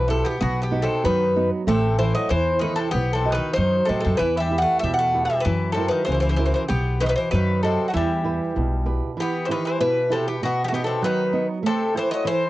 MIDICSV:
0, 0, Header, 1, 5, 480
1, 0, Start_track
1, 0, Key_signature, 1, "minor"
1, 0, Tempo, 629591
1, 314, Time_signature, 2, 2, 24, 8
1, 4632, Tempo, 617284
1, 9625, End_track
2, 0, Start_track
2, 0, Title_t, "Bouzouki"
2, 0, Program_c, 0, 25
2, 77, Note_on_c, 0, 69, 83
2, 199, Note_off_c, 0, 69, 0
2, 199, Note_on_c, 0, 67, 79
2, 309, Note_off_c, 0, 67, 0
2, 322, Note_on_c, 0, 66, 78
2, 478, Note_off_c, 0, 66, 0
2, 481, Note_on_c, 0, 67, 79
2, 627, Note_on_c, 0, 69, 76
2, 644, Note_off_c, 0, 67, 0
2, 796, Note_off_c, 0, 69, 0
2, 799, Note_on_c, 0, 71, 102
2, 1135, Note_off_c, 0, 71, 0
2, 1284, Note_on_c, 0, 69, 90
2, 1511, Note_off_c, 0, 69, 0
2, 1514, Note_on_c, 0, 72, 87
2, 1629, Note_off_c, 0, 72, 0
2, 1636, Note_on_c, 0, 75, 87
2, 1751, Note_off_c, 0, 75, 0
2, 1756, Note_on_c, 0, 72, 101
2, 1989, Note_off_c, 0, 72, 0
2, 1992, Note_on_c, 0, 71, 88
2, 2102, Note_on_c, 0, 69, 86
2, 2121, Note_off_c, 0, 71, 0
2, 2217, Note_off_c, 0, 69, 0
2, 2220, Note_on_c, 0, 67, 92
2, 2380, Note_off_c, 0, 67, 0
2, 2387, Note_on_c, 0, 69, 80
2, 2532, Note_on_c, 0, 71, 91
2, 2543, Note_off_c, 0, 69, 0
2, 2691, Note_off_c, 0, 71, 0
2, 2695, Note_on_c, 0, 72, 107
2, 2938, Note_on_c, 0, 69, 87
2, 2956, Note_off_c, 0, 72, 0
2, 3044, Note_off_c, 0, 69, 0
2, 3053, Note_on_c, 0, 69, 84
2, 3178, Note_off_c, 0, 69, 0
2, 3180, Note_on_c, 0, 71, 93
2, 3330, Note_off_c, 0, 71, 0
2, 3333, Note_on_c, 0, 76, 85
2, 3489, Note_off_c, 0, 76, 0
2, 3492, Note_on_c, 0, 78, 91
2, 3652, Note_off_c, 0, 78, 0
2, 3655, Note_on_c, 0, 76, 114
2, 3761, Note_off_c, 0, 76, 0
2, 3764, Note_on_c, 0, 78, 92
2, 4001, Note_off_c, 0, 78, 0
2, 4004, Note_on_c, 0, 76, 93
2, 4120, Note_on_c, 0, 71, 94
2, 4130, Note_off_c, 0, 76, 0
2, 4360, Note_off_c, 0, 71, 0
2, 4363, Note_on_c, 0, 69, 91
2, 4483, Note_off_c, 0, 69, 0
2, 4486, Note_on_c, 0, 71, 88
2, 4607, Note_off_c, 0, 71, 0
2, 4610, Note_on_c, 0, 72, 97
2, 4656, Note_off_c, 0, 72, 0
2, 4665, Note_on_c, 0, 72, 69
2, 4720, Note_off_c, 0, 72, 0
2, 4730, Note_on_c, 0, 72, 78
2, 4791, Note_off_c, 0, 72, 0
2, 4801, Note_on_c, 0, 72, 74
2, 4847, Note_off_c, 0, 72, 0
2, 4856, Note_on_c, 0, 72, 80
2, 4919, Note_off_c, 0, 72, 0
2, 4928, Note_on_c, 0, 72, 68
2, 4983, Note_off_c, 0, 72, 0
2, 4992, Note_on_c, 0, 72, 77
2, 5061, Note_off_c, 0, 72, 0
2, 5105, Note_on_c, 0, 67, 87
2, 5336, Note_off_c, 0, 67, 0
2, 5354, Note_on_c, 0, 71, 90
2, 5384, Note_off_c, 0, 71, 0
2, 5399, Note_on_c, 0, 72, 78
2, 5419, Note_off_c, 0, 72, 0
2, 5423, Note_on_c, 0, 71, 93
2, 5469, Note_off_c, 0, 71, 0
2, 5472, Note_on_c, 0, 72, 82
2, 5588, Note_off_c, 0, 72, 0
2, 5592, Note_on_c, 0, 71, 99
2, 5820, Note_off_c, 0, 71, 0
2, 5840, Note_on_c, 0, 69, 77
2, 6030, Note_off_c, 0, 69, 0
2, 6035, Note_on_c, 0, 66, 57
2, 6075, Note_off_c, 0, 66, 0
2, 6078, Note_on_c, 0, 64, 83
2, 6772, Note_off_c, 0, 64, 0
2, 7063, Note_on_c, 0, 67, 89
2, 7259, Note_on_c, 0, 72, 62
2, 7270, Note_off_c, 0, 67, 0
2, 7287, Note_off_c, 0, 72, 0
2, 7306, Note_on_c, 0, 71, 83
2, 7419, Note_off_c, 0, 71, 0
2, 7428, Note_on_c, 0, 72, 73
2, 7529, Note_off_c, 0, 72, 0
2, 7533, Note_on_c, 0, 71, 103
2, 7774, Note_on_c, 0, 69, 81
2, 7776, Note_off_c, 0, 71, 0
2, 7893, Note_off_c, 0, 69, 0
2, 7900, Note_on_c, 0, 67, 73
2, 8004, Note_off_c, 0, 67, 0
2, 8019, Note_on_c, 0, 66, 86
2, 8160, Note_off_c, 0, 66, 0
2, 8184, Note_on_c, 0, 67, 75
2, 8211, Note_off_c, 0, 67, 0
2, 8215, Note_on_c, 0, 66, 70
2, 8249, Note_off_c, 0, 66, 0
2, 8258, Note_on_c, 0, 67, 78
2, 8325, Note_off_c, 0, 67, 0
2, 8338, Note_on_c, 0, 69, 79
2, 8479, Note_off_c, 0, 69, 0
2, 8494, Note_on_c, 0, 71, 100
2, 8821, Note_off_c, 0, 71, 0
2, 8976, Note_on_c, 0, 69, 99
2, 9190, Note_off_c, 0, 69, 0
2, 9219, Note_on_c, 0, 72, 84
2, 9319, Note_off_c, 0, 72, 0
2, 9325, Note_on_c, 0, 75, 93
2, 9431, Note_off_c, 0, 75, 0
2, 9450, Note_on_c, 0, 72, 104
2, 9625, Note_off_c, 0, 72, 0
2, 9625, End_track
3, 0, Start_track
3, 0, Title_t, "Nylon-string guitar"
3, 0, Program_c, 1, 24
3, 0, Note_on_c, 1, 47, 68
3, 65, Note_on_c, 1, 64, 47
3, 70, Note_on_c, 1, 67, 44
3, 74, Note_on_c, 1, 71, 49
3, 262, Note_off_c, 1, 64, 0
3, 263, Note_off_c, 1, 67, 0
3, 267, Note_off_c, 1, 71, 0
3, 297, Note_off_c, 1, 47, 0
3, 310, Note_on_c, 1, 47, 58
3, 543, Note_on_c, 1, 59, 49
3, 546, Note_on_c, 1, 63, 48
3, 551, Note_on_c, 1, 66, 58
3, 781, Note_off_c, 1, 47, 0
3, 791, Note_on_c, 1, 54, 74
3, 935, Note_off_c, 1, 63, 0
3, 936, Note_off_c, 1, 59, 0
3, 940, Note_off_c, 1, 66, 0
3, 1036, Note_on_c, 1, 63, 45
3, 1040, Note_on_c, 1, 59, 51
3, 1044, Note_on_c, 1, 66, 54
3, 1230, Note_off_c, 1, 63, 0
3, 1232, Note_off_c, 1, 59, 0
3, 1235, Note_off_c, 1, 66, 0
3, 1262, Note_off_c, 1, 54, 0
3, 1272, Note_on_c, 1, 57, 64
3, 1518, Note_on_c, 1, 64, 55
3, 1519, Note_on_c, 1, 69, 44
3, 1519, Note_on_c, 1, 72, 52
3, 1743, Note_off_c, 1, 57, 0
3, 1761, Note_on_c, 1, 52, 73
3, 1904, Note_off_c, 1, 72, 0
3, 1905, Note_off_c, 1, 64, 0
3, 1905, Note_off_c, 1, 69, 0
3, 1995, Note_on_c, 1, 64, 50
3, 1998, Note_on_c, 1, 69, 44
3, 2002, Note_on_c, 1, 72, 54
3, 2190, Note_off_c, 1, 64, 0
3, 2192, Note_off_c, 1, 69, 0
3, 2194, Note_off_c, 1, 72, 0
3, 2228, Note_off_c, 1, 52, 0
3, 2239, Note_on_c, 1, 59, 62
3, 2475, Note_on_c, 1, 66, 47
3, 2477, Note_on_c, 1, 71, 45
3, 2481, Note_on_c, 1, 75, 54
3, 2706, Note_off_c, 1, 59, 0
3, 2720, Note_on_c, 1, 54, 66
3, 2862, Note_off_c, 1, 66, 0
3, 2862, Note_off_c, 1, 71, 0
3, 2865, Note_off_c, 1, 75, 0
3, 2951, Note_on_c, 1, 66, 45
3, 2955, Note_on_c, 1, 71, 42
3, 2959, Note_on_c, 1, 75, 49
3, 3147, Note_off_c, 1, 66, 0
3, 3149, Note_off_c, 1, 71, 0
3, 3152, Note_off_c, 1, 75, 0
3, 3186, Note_off_c, 1, 54, 0
3, 3193, Note_on_c, 1, 52, 62
3, 3438, Note_on_c, 1, 64, 47
3, 3444, Note_on_c, 1, 67, 46
3, 3449, Note_on_c, 1, 71, 51
3, 3661, Note_off_c, 1, 52, 0
3, 3682, Note_on_c, 1, 47, 62
3, 3821, Note_off_c, 1, 64, 0
3, 3825, Note_off_c, 1, 67, 0
3, 3825, Note_off_c, 1, 71, 0
3, 3921, Note_on_c, 1, 67, 45
3, 3922, Note_on_c, 1, 64, 50
3, 3925, Note_on_c, 1, 71, 51
3, 4110, Note_off_c, 1, 64, 0
3, 4111, Note_off_c, 1, 67, 0
3, 4113, Note_off_c, 1, 71, 0
3, 4143, Note_off_c, 1, 47, 0
3, 4156, Note_on_c, 1, 54, 59
3, 4398, Note_on_c, 1, 64, 52
3, 4402, Note_on_c, 1, 66, 47
3, 4405, Note_on_c, 1, 70, 54
3, 4618, Note_off_c, 1, 54, 0
3, 4639, Note_on_c, 1, 49, 64
3, 4780, Note_off_c, 1, 64, 0
3, 4783, Note_off_c, 1, 66, 0
3, 4784, Note_off_c, 1, 70, 0
3, 4872, Note_on_c, 1, 66, 43
3, 4876, Note_on_c, 1, 64, 53
3, 4879, Note_on_c, 1, 70, 54
3, 5067, Note_off_c, 1, 66, 0
3, 5069, Note_off_c, 1, 64, 0
3, 5071, Note_off_c, 1, 70, 0
3, 5106, Note_off_c, 1, 49, 0
3, 5109, Note_on_c, 1, 59, 64
3, 5363, Note_off_c, 1, 59, 0
3, 5363, Note_on_c, 1, 66, 48
3, 5366, Note_on_c, 1, 71, 48
3, 5372, Note_on_c, 1, 75, 56
3, 5599, Note_on_c, 1, 54, 64
3, 5748, Note_off_c, 1, 66, 0
3, 5750, Note_off_c, 1, 71, 0
3, 5753, Note_off_c, 1, 75, 0
3, 5843, Note_on_c, 1, 66, 47
3, 5848, Note_on_c, 1, 71, 43
3, 5850, Note_on_c, 1, 75, 53
3, 6036, Note_off_c, 1, 66, 0
3, 6037, Note_off_c, 1, 71, 0
3, 6040, Note_off_c, 1, 75, 0
3, 6068, Note_off_c, 1, 54, 0
3, 6077, Note_on_c, 1, 52, 61
3, 6319, Note_on_c, 1, 64, 46
3, 6324, Note_on_c, 1, 67, 43
3, 6326, Note_on_c, 1, 71, 58
3, 6547, Note_off_c, 1, 52, 0
3, 6563, Note_on_c, 1, 47, 61
3, 6706, Note_off_c, 1, 64, 0
3, 6709, Note_off_c, 1, 67, 0
3, 6709, Note_off_c, 1, 71, 0
3, 6792, Note_on_c, 1, 64, 44
3, 6796, Note_on_c, 1, 67, 41
3, 6799, Note_on_c, 1, 71, 47
3, 6990, Note_off_c, 1, 64, 0
3, 6992, Note_off_c, 1, 67, 0
3, 6993, Note_off_c, 1, 71, 0
3, 7030, Note_off_c, 1, 47, 0
3, 7037, Note_on_c, 1, 52, 55
3, 7284, Note_on_c, 1, 64, 50
3, 7292, Note_on_c, 1, 67, 46
3, 7298, Note_on_c, 1, 71, 56
3, 7506, Note_off_c, 1, 52, 0
3, 7531, Note_on_c, 1, 47, 71
3, 7668, Note_off_c, 1, 64, 0
3, 7673, Note_off_c, 1, 67, 0
3, 7676, Note_off_c, 1, 71, 0
3, 7760, Note_on_c, 1, 64, 50
3, 7765, Note_on_c, 1, 67, 46
3, 7770, Note_on_c, 1, 71, 55
3, 7954, Note_off_c, 1, 64, 0
3, 7955, Note_off_c, 1, 67, 0
3, 7959, Note_off_c, 1, 71, 0
3, 7993, Note_off_c, 1, 47, 0
3, 8013, Note_on_c, 1, 47, 60
3, 8245, Note_on_c, 1, 59, 55
3, 8250, Note_on_c, 1, 63, 43
3, 8254, Note_on_c, 1, 66, 55
3, 8472, Note_off_c, 1, 47, 0
3, 8479, Note_on_c, 1, 54, 68
3, 8626, Note_off_c, 1, 59, 0
3, 8629, Note_off_c, 1, 63, 0
3, 8632, Note_off_c, 1, 66, 0
3, 8718, Note_on_c, 1, 59, 53
3, 8719, Note_on_c, 1, 63, 47
3, 8722, Note_on_c, 1, 66, 61
3, 8909, Note_off_c, 1, 63, 0
3, 8910, Note_off_c, 1, 59, 0
3, 8912, Note_off_c, 1, 66, 0
3, 8943, Note_off_c, 1, 54, 0
3, 8949, Note_on_c, 1, 57, 68
3, 9196, Note_on_c, 1, 64, 53
3, 9200, Note_on_c, 1, 69, 43
3, 9207, Note_on_c, 1, 72, 56
3, 9415, Note_off_c, 1, 57, 0
3, 9432, Note_on_c, 1, 52, 71
3, 9577, Note_off_c, 1, 69, 0
3, 9578, Note_off_c, 1, 64, 0
3, 9583, Note_off_c, 1, 72, 0
3, 9625, Note_off_c, 1, 52, 0
3, 9625, End_track
4, 0, Start_track
4, 0, Title_t, "Bouzouki"
4, 0, Program_c, 2, 25
4, 60, Note_on_c, 2, 48, 63
4, 178, Note_off_c, 2, 48, 0
4, 189, Note_on_c, 2, 59, 69
4, 301, Note_off_c, 2, 59, 0
4, 310, Note_on_c, 2, 59, 90
4, 462, Note_off_c, 2, 59, 0
4, 471, Note_on_c, 2, 59, 66
4, 623, Note_off_c, 2, 59, 0
4, 635, Note_on_c, 2, 48, 74
4, 786, Note_off_c, 2, 48, 0
4, 808, Note_on_c, 2, 51, 72
4, 1140, Note_off_c, 2, 51, 0
4, 1280, Note_on_c, 2, 48, 96
4, 1504, Note_off_c, 2, 48, 0
4, 1515, Note_on_c, 2, 52, 82
4, 1630, Note_off_c, 2, 52, 0
4, 1635, Note_on_c, 2, 54, 76
4, 1747, Note_on_c, 2, 52, 76
4, 1750, Note_off_c, 2, 54, 0
4, 1973, Note_off_c, 2, 52, 0
4, 1976, Note_on_c, 2, 51, 75
4, 2100, Note_off_c, 2, 51, 0
4, 2104, Note_on_c, 2, 48, 66
4, 2219, Note_on_c, 2, 59, 93
4, 2224, Note_off_c, 2, 48, 0
4, 2379, Note_off_c, 2, 59, 0
4, 2401, Note_on_c, 2, 48, 71
4, 2548, Note_off_c, 2, 48, 0
4, 2551, Note_on_c, 2, 51, 84
4, 2705, Note_off_c, 2, 51, 0
4, 2714, Note_on_c, 2, 51, 75
4, 2940, Note_off_c, 2, 51, 0
4, 2965, Note_on_c, 2, 48, 73
4, 3075, Note_off_c, 2, 48, 0
4, 3084, Note_on_c, 2, 48, 67
4, 3192, Note_off_c, 2, 48, 0
4, 3195, Note_on_c, 2, 52, 97
4, 3346, Note_off_c, 2, 52, 0
4, 3357, Note_on_c, 2, 55, 85
4, 3507, Note_off_c, 2, 55, 0
4, 3522, Note_on_c, 2, 57, 86
4, 3669, Note_off_c, 2, 57, 0
4, 3687, Note_on_c, 2, 55, 77
4, 3794, Note_off_c, 2, 55, 0
4, 3803, Note_on_c, 2, 57, 79
4, 4023, Note_off_c, 2, 57, 0
4, 4038, Note_on_c, 2, 55, 76
4, 4149, Note_off_c, 2, 55, 0
4, 4153, Note_on_c, 2, 52, 100
4, 4376, Note_off_c, 2, 52, 0
4, 4379, Note_on_c, 2, 48, 76
4, 4497, Note_off_c, 2, 48, 0
4, 4504, Note_on_c, 2, 51, 76
4, 4619, Note_off_c, 2, 51, 0
4, 4624, Note_on_c, 2, 52, 70
4, 4676, Note_off_c, 2, 52, 0
4, 4685, Note_on_c, 2, 52, 53
4, 4737, Note_off_c, 2, 52, 0
4, 4746, Note_on_c, 2, 52, 68
4, 4801, Note_off_c, 2, 52, 0
4, 4811, Note_on_c, 2, 52, 62
4, 4851, Note_off_c, 2, 52, 0
4, 4860, Note_on_c, 2, 52, 66
4, 4923, Note_off_c, 2, 52, 0
4, 4932, Note_on_c, 2, 52, 54
4, 4994, Note_off_c, 2, 52, 0
4, 5006, Note_on_c, 2, 52, 68
4, 5062, Note_off_c, 2, 52, 0
4, 5114, Note_on_c, 2, 59, 86
4, 5340, Note_off_c, 2, 59, 0
4, 5359, Note_on_c, 2, 51, 81
4, 5387, Note_off_c, 2, 51, 0
4, 5417, Note_on_c, 2, 52, 62
4, 5422, Note_on_c, 2, 51, 74
4, 5433, Note_off_c, 2, 52, 0
4, 5476, Note_off_c, 2, 51, 0
4, 5487, Note_on_c, 2, 52, 68
4, 5596, Note_off_c, 2, 52, 0
4, 5617, Note_on_c, 2, 51, 65
4, 5834, Note_off_c, 2, 51, 0
4, 5852, Note_on_c, 2, 48, 68
4, 6019, Note_off_c, 2, 48, 0
4, 6051, Note_on_c, 2, 57, 52
4, 6093, Note_off_c, 2, 57, 0
4, 6102, Note_on_c, 2, 55, 84
4, 6784, Note_off_c, 2, 55, 0
4, 7076, Note_on_c, 2, 59, 83
4, 7257, Note_off_c, 2, 59, 0
4, 7257, Note_on_c, 2, 52, 53
4, 7284, Note_off_c, 2, 52, 0
4, 7305, Note_on_c, 2, 51, 68
4, 7407, Note_off_c, 2, 51, 0
4, 7413, Note_on_c, 2, 52, 66
4, 7521, Note_off_c, 2, 52, 0
4, 7533, Note_on_c, 2, 52, 62
4, 7752, Note_off_c, 2, 52, 0
4, 7783, Note_on_c, 2, 48, 72
4, 7886, Note_off_c, 2, 48, 0
4, 7899, Note_on_c, 2, 59, 61
4, 8003, Note_off_c, 2, 59, 0
4, 8037, Note_on_c, 2, 59, 80
4, 8170, Note_off_c, 2, 59, 0
4, 8187, Note_on_c, 2, 59, 68
4, 8211, Note_off_c, 2, 59, 0
4, 8214, Note_on_c, 2, 57, 55
4, 8246, Note_off_c, 2, 57, 0
4, 8267, Note_on_c, 2, 59, 72
4, 8330, Note_off_c, 2, 59, 0
4, 8356, Note_on_c, 2, 48, 71
4, 8489, Note_off_c, 2, 48, 0
4, 8506, Note_on_c, 2, 51, 74
4, 8827, Note_off_c, 2, 51, 0
4, 8977, Note_on_c, 2, 48, 91
4, 9190, Note_off_c, 2, 48, 0
4, 9227, Note_on_c, 2, 52, 80
4, 9324, Note_off_c, 2, 52, 0
4, 9345, Note_on_c, 2, 54, 79
4, 9442, Note_off_c, 2, 54, 0
4, 9454, Note_on_c, 2, 52, 68
4, 9625, Note_off_c, 2, 52, 0
4, 9625, End_track
5, 0, Start_track
5, 0, Title_t, "Upright bass"
5, 0, Program_c, 3, 32
5, 0, Note_on_c, 3, 35, 78
5, 172, Note_off_c, 3, 35, 0
5, 317, Note_on_c, 3, 35, 89
5, 654, Note_off_c, 3, 35, 0
5, 798, Note_on_c, 3, 42, 84
5, 1136, Note_off_c, 3, 42, 0
5, 1274, Note_on_c, 3, 33, 94
5, 1614, Note_off_c, 3, 33, 0
5, 1758, Note_on_c, 3, 40, 80
5, 2096, Note_off_c, 3, 40, 0
5, 2237, Note_on_c, 3, 35, 87
5, 2575, Note_off_c, 3, 35, 0
5, 2726, Note_on_c, 3, 42, 77
5, 2893, Note_off_c, 3, 42, 0
5, 2970, Note_on_c, 3, 45, 78
5, 3074, Note_off_c, 3, 45, 0
5, 3095, Note_on_c, 3, 42, 84
5, 3197, Note_off_c, 3, 42, 0
5, 3203, Note_on_c, 3, 40, 85
5, 3537, Note_off_c, 3, 40, 0
5, 3681, Note_on_c, 3, 40, 72
5, 4015, Note_off_c, 3, 40, 0
5, 4161, Note_on_c, 3, 42, 86
5, 4492, Note_off_c, 3, 42, 0
5, 4636, Note_on_c, 3, 37, 76
5, 4974, Note_off_c, 3, 37, 0
5, 5119, Note_on_c, 3, 35, 87
5, 5457, Note_off_c, 3, 35, 0
5, 5606, Note_on_c, 3, 42, 92
5, 5942, Note_off_c, 3, 42, 0
5, 6088, Note_on_c, 3, 40, 88
5, 6424, Note_off_c, 3, 40, 0
5, 6569, Note_on_c, 3, 35, 84
5, 6904, Note_off_c, 3, 35, 0
5, 9625, End_track
0, 0, End_of_file